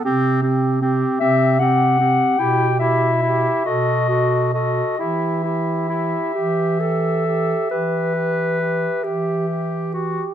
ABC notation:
X:1
M:12/8
L:1/8
Q:3/8=45
K:Em
V:1 name="Clarinet"
z3 e f2 g e2 ^d2 d | e8- e3 z |]
V:2 name="Alto saxophone"
G G G G G G G G G A A A | G G G G G G G G G G G G |]
V:3 name="Clarinet"
C C C C C C E E E F F F | E E E G A2 B3 G2 F |]
V:4 name="Bass clarinet" clef=bass
C,3 C,3 B,,3 B,,3 | E,3 E,3 E,3 E,3 |]